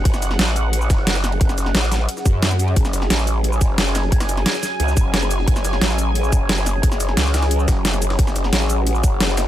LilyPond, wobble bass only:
\new Staff \with { instrumentName = "Wobble bass" } { \clef bass \time 4/4 \key fis \minor \tempo 4 = 177 fis,,4 a,,4. fis,,4. | fis,,4 a,,4 r8 fis,4. | fis,,4 a,,4. fis,,4. | fis,,4 r4 cis,8 fis,,4. |
fis,,4 a,,4. fis,,4. | fis,,4 cis,4. fis,,4. | fis,,4 a,,4. fis,,4. | }